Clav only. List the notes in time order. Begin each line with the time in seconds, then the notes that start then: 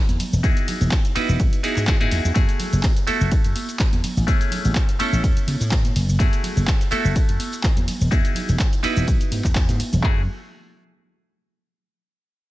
Already playing: A3 E4 F#4 A4
0.43 D#4 E4 F#4 G#4
1.15 D#4 E4 F#4 B4
1.63 D#4 E4 F#4 G#4
1.87 D#4 E4 F#4 G#4
2.00 D#4 E4 F#4 G#4
2.34 A3 E4 F#4 G#4
3.07 A3 E4 F#4 A4
4.27 A3 C#4 E4 G#4
4.99 A3 C#4 E4 A4
6.19 A3 E4 F#4 G#4
6.91 A3 E4 F#4 A4
8.11 D#4 E4 F#4 G#4
8.83 D#4 E4 F#4 B4
10.02 A3 E4 F#4 G#4